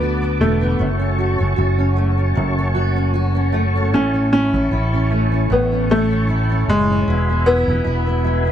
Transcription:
Already playing: fretless electric bass D2, steel-string acoustic guitar D3 A3 B3, upright piano B3, tonewheel organ F#4 B4 A5 D6
0.01 steel-string acoustic guitar F#4
0.22 steel-string acoustic guitar B3
0.41 fretless electric bass E1, upright piano A3, steel-string acoustic guitar A3
0.61 steel-string acoustic guitar B3
0.79 fretless electric bass F#1, steel-string acoustic guitar F#2, tonewheel organ C#5 C#6
0.99 steel-string acoustic guitar C#4
1.19 steel-string acoustic guitar F#4
1.38 fretless electric bass F#1, steel-string acoustic guitar C#4
1.56 fretless electric bass F#1, steel-string acoustic guitar F#4
1.78 steel-string acoustic guitar C#4
1.97 steel-string acoustic guitar A3
2.18 steel-string acoustic guitar C#4
2.35 fretless electric bass F#1, steel-string acoustic guitar F#2
2.58 steel-string acoustic guitar C#4
2.74 steel-string acoustic guitar F#4
2.96 steel-string acoustic guitar C#4
3.14 steel-string acoustic guitar F#4
3.35 steel-string acoustic guitar C#4
3.53 steel-string acoustic guitar A3
3.76 steel-string acoustic guitar C#4
3.92 fretless electric bass A1, steel-string acoustic guitar A2, upright piano C#4, tonewheel organ E4 C#6
4.14 steel-string acoustic guitar C#4
4.33 upright piano C#4, steel-string acoustic guitar E4
4.54 fretless electric bass A1, steel-string acoustic guitar C#4
4.71 fretless electric bass A1, steel-string acoustic guitar E4
4.93 steel-string acoustic guitar C#4
5.11 steel-string acoustic guitar A3
5.32 steel-string acoustic guitar C#4
5.50 fretless electric bass A1, steel-string acoustic guitar A2, upright piano B3
5.72 steel-string acoustic guitar C#4
5.90 upright piano A3, steel-string acoustic guitar E4
6.11 steel-string acoustic guitar C#4
6.28 steel-string acoustic guitar E4
6.50 steel-string acoustic guitar C#4
6.68 fretless electric bass F#1, upright piano G#3
6.90 steel-string acoustic guitar C#4
7.08 fretless electric bass E1, steel-string acoustic guitar E2, tonewheel organ F#4 E5 G#5 B5
7.29 steel-string acoustic guitar B3
7.46 upright piano B3, steel-string acoustic guitar E4
7.68 fretless electric bass E1, steel-string acoustic guitar B3
7.84 fretless electric bass E1, steel-string acoustic guitar E4
8.07 steel-string acoustic guitar B3
8.24 steel-string acoustic guitar G#3
8.45 steel-string acoustic guitar B3

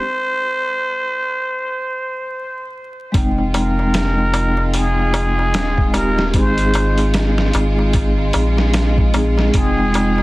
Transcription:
Already playing: muted trumpet C5
3.12 sub bass F1, vibraphone G#3 C4 D#4, violin section G#3 F4, synth drone G#3, kick, closed hi-hat, darbuka tek
3.17 vibraphone G5
3.38 darbuka tek
3.54 muted trumpet A#4, closed hi-hat, darbuka tek
3.79 darbuka tek
3.94 snare, closed hi-hat, darbuka tek
4.18 darbuka tek
4.34 closed hi-hat, darbuka tek
4.57 darbuka tek
4.74 muted trumpet G#4, closed hi-hat, darbuka tek
4.98 darbuka tek
5.14 closed hi-hat, darbuka tek
5.39 darbuka tek
5.54 sub bass D#1, snare, closed hi-hat, darbuka tek
5.77 kick, darbuka tek
5.92 vibraphone G#3 C4 D#4 G4, muted trumpet A#4, closed hi-hat, darbuka tek
6.18 snare, darbuka tek
6.31 sub bass G#1, vibraphone G#3 C4 D#4, kick, closed hi-hat, darbuka tek
6.35 vibraphone G#4, muted trumpet C5
6.58 closed hi-hat, darbuka tek
6.74 closed hi-hat, darbuka tek
6.98 closed hi-hat, darbuka tek
7.14 snare, closed hi-hat, darbuka tek
7.38 snare, darbuka tek
7.53 sub bass G#1, closed hi-hat, darbuka tek
7.79 darbuka tek
7.93 kick, closed hi-hat, darbuka tek
8.18 darbuka tek
8.33 sub bass A#1, closed hi-hat, darbuka tek
8.57 snare, darbuka tek
8.73 snare, closed hi-hat, darbuka tek
8.98 kick, darbuka tek
9.13 sub bass A#1, vibraphone G#3 C4 D#4 G#4, closed hi-hat, darbuka tek
9.38 snare, darbuka tek
9.52 sub bass F1, vibraphone G#3 C4 D#4, kick, closed hi-hat, darbuka tek
9.57 muted trumpet G#4, vibraphone G5
9.78 darbuka tek
9.94 closed hi-hat, darbuka tek
10.18 darbuka tek

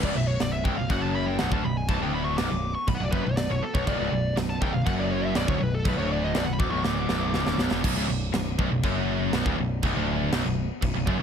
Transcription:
0.03 picked electric bass C#1, distorted electric guitar C#2, lead electric guitar D5, kick
0.15 picked electric bass B0, distorted electric guitar B1, lead electric guitar E5
0.27 lead electric guitar C#5
0.40 picked electric bass B0, distorted electric guitar B1, lead electric guitar D5, snare, china
0.53 lead electric guitar E5
0.64 picked electric bass B0, distorted electric guitar B1, lead electric guitar G5, kick
0.77 picked electric bass B0, distorted electric guitar B1, lead electric guitar F5
0.90 picked electric bass F#1, distorted electric guitar F#2, lead electric guitar F#5, kick, china
1.02 lead electric guitar A5
1.15 lead electric guitar B5
1.26 lead electric guitar G5
1.39 picked electric bass B0, distorted electric guitar B1, lead electric guitar F#5, snare, china
1.52 picked electric bass D1, distorted electric guitar D2, lead electric guitar A5, kick
1.64 picked electric bass B0, distorted electric guitar B1, lead electric guitar B5
1.77 lead electric guitar G#5
1.88 picked electric bass B0, distorted electric guitar B1, lead electric guitar A5, kick, china
2.01 picked electric bass D1, distorted electric guitar D2, lead electric guitar G5
2.14 lead electric guitar B5
2.25 lead electric guitar C#6
2.37 picked electric bass B0, distorted electric guitar B1, lead electric guitar D6, snare, china
2.51 picked electric bass B0, distorted electric guitar B1
2.75 lead electric guitar C#6
2.87 picked electric bass B0, distorted electric guitar B1, lead electric guitar B5, kick, china
2.95 lead electric guitar F#5
3.00 picked electric bass B0, distorted electric guitar B1, lead electric guitar D5
3.11 picked electric bass F#1, distorted electric guitar F#2, lead electric guitar B4, kick
3.25 picked electric bass B0, distorted electric guitar B1, lead electric guitar C#5
3.37 lead electric guitar D5, snare, china
3.50 picked electric bass B0, distorted electric guitar B1, lead electric guitar C#5
3.62 lead electric guitar A4, muted picked electric bass stroke, muted distorted electric guitar stroke
3.74 picked electric bass B0, distorted electric guitar B1, lead electric guitar C#5, kick
3.86 picked electric bass B0, distorted electric guitar B1, lead electric guitar D5, kick, china
4.00 picked electric bass C#1, distorted electric guitar C#2
4.12 picked electric bass B0, distorted electric guitar B1
4.36 picked electric bass B0, distorted electric guitar B1, snare, china
4.50 lead electric guitar A5
4.61 picked electric bass B0, distorted electric guitar B1, lead electric guitar G5, kick
4.74 picked electric bass B0, distorted electric guitar B1, lead electric guitar F5
4.86 picked electric bass F#1, distorted electric guitar F#2, lead electric guitar F#5, kick, china
5.00 lead electric guitar D5
5.11 lead electric guitar C#5
5.25 lead electric guitar E5
5.35 picked electric bass B0, distorted electric guitar B1, lead electric guitar D5, snare, china
5.47 picked electric bass D1, distorted electric guitar D2, lead electric guitar C#5, kick
5.60 picked electric bass B0, distorted electric guitar B1, lead electric guitar B4
5.75 lead electric guitar A4
5.84 picked electric bass B0, distorted electric guitar B1, lead electric guitar B4, kick, china
5.97 picked electric bass D1, distorted electric guitar D2, lead electric guitar C#5
6.12 lead electric guitar D5
6.25 lead electric guitar D#5
6.34 picked electric bass B0, distorted electric guitar B1, lead electric guitar D5, snare, china
6.44 picked electric bass B0, distorted electric guitar B1, lead electric guitar F#5
6.53 lead electric guitar B5
6.59 picked electric bass D1, distorted electric guitar D2, lead electric guitar D6, kick
6.71 picked electric bass B0, distorted electric guitar B1, lead electric guitar C#6
6.84 picked electric bass D1, distorted electric guitar D2, lead electric guitar D6, snare
7.09 picked electric bass B0, distorted electric guitar B1, snare
7.34 picked electric bass C#1, distorted electric guitar C#2, snare
7.46 picked electric bass D1, distorted electric guitar D2, snare
7.58 picked electric bass B0, distorted electric guitar B1, snare
7.71 picked electric bass E1, distorted electric guitar E2, snare
7.84 picked electric bass B0, distorted electric guitar B1, kick, crash, china
7.95 picked electric bass C#1, distorted electric guitar C#2
8.08 picked electric bass B0, distorted electric guitar B1
8.33 picked electric bass B0, distorted electric guitar B1, snare, china
8.58 picked electric bass B0, distorted electric guitar B1, kick
8.70 picked electric bass B0, distorted electric guitar B1
8.83 picked electric bass F#1, distorted electric guitar F#2, kick, china
9.32 picked electric bass B0, distorted electric guitar B1, snare, china
9.46 picked electric bass D1, distorted electric guitar D2, kick
9.57 picked electric bass B0, distorted electric guitar B1
9.83 picked electric bass B0, distorted electric guitar B1, kick, china
9.95 picked electric bass D1, distorted electric guitar D2
10.33 picked electric bass B0, distorted electric guitar B1, snare, china
10.46 picked electric bass B0, distorted electric guitar B1
10.82 picked electric bass B0, distorted electric guitar B1, kick, china
10.94 picked electric bass B0, distorted electric guitar B1
11.07 picked electric bass F#1, distorted electric guitar F#2, kick
11.20 picked electric bass B0

